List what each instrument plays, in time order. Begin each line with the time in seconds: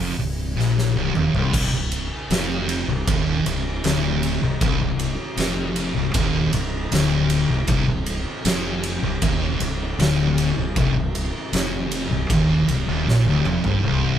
0.00 fingered electric bass F1, distorted electric guitar F2
0.18 fingered electric bass C1, distorted electric guitar C2
0.56 fingered electric bass A#1, distorted electric guitar A#2, snare
0.78 snare
0.94 fingered electric bass C1, distorted electric guitar C2
1.14 fingered electric bass D#1, distorted electric guitar D#2, mid tom
1.34 fingered electric bass C1, distorted electric guitar C2, floor tom
1.53 fingered electric bass C1, distorted electric guitar C2, kick, crash
1.72 fingered electric bass C1, distorted electric guitar C2
1.92 ride
2.30 fingered electric bass F1, distorted electric guitar F2, snare, ride
2.69 ride
2.88 fingered electric bass C1, distorted electric guitar C2
3.07 fingered electric bass D#1, distorted electric guitar D#2, kick, ride
3.45 fingered electric bass C1, distorted electric guitar C2, ride
3.84 fingered electric bass D1, distorted electric guitar D2, snare, ride
4.23 ride
4.42 fingered electric bass C1, distorted electric guitar C2
4.61 fingered electric bass C1, distorted electric guitar C2, kick, ride
4.80 fingered electric bass C1, distorted electric guitar C2
4.99 ride
5.37 fingered electric bass F1, distorted electric guitar F2, snare, ride
5.76 ride
5.95 fingered electric bass C1, distorted electric guitar C2
6.14 fingered electric bass D#1, distorted electric guitar D#2, kick, ride
6.53 fingered electric bass C1, distorted electric guitar C2, ride
6.91 fingered electric bass D1, distorted electric guitar D2, snare, ride
7.30 ride
7.49 fingered electric bass C1, distorted electric guitar C2
7.67 fingered electric bass C1, distorted electric guitar C2, kick, ride
7.87 fingered electric bass C1, distorted electric guitar C2
8.06 ride
8.45 fingered electric bass F1, distorted electric guitar F2, snare, ride
8.83 ride
9.03 fingered electric bass C1, distorted electric guitar C2
9.21 fingered electric bass D#1, distorted electric guitar D#2, kick, ride
9.60 fingered electric bass C1, distorted electric guitar C2, ride
9.98 fingered electric bass D1, distorted electric guitar D2, snare, ride
10.38 ride
10.57 fingered electric bass C1, distorted electric guitar C2
10.76 fingered electric bass C1, distorted electric guitar C2, kick, ride
10.96 fingered electric bass C1, distorted electric guitar C2
11.15 ride
11.53 fingered electric bass F1, distorted electric guitar F2, snare, ride
11.92 ride
12.11 fingered electric bass C1, distorted electric guitar C2
12.30 fingered electric bass D#1, distorted electric guitar D#2, kick, ride
12.68 fingered electric bass C1, distorted electric guitar C2, ride
12.87 fingered electric bass D#1, distorted electric guitar D#2
13.07 fingered electric bass A#1, distorted electric guitar A#2, snare
13.26 fingered electric bass D1, distorted electric guitar D2
13.45 fingered electric bass F1, distorted electric guitar F2, mid tom
13.63 fingered electric bass G1, distorted electric guitar G2, floor tom
13.83 fingered electric bass C1, distorted electric guitar C2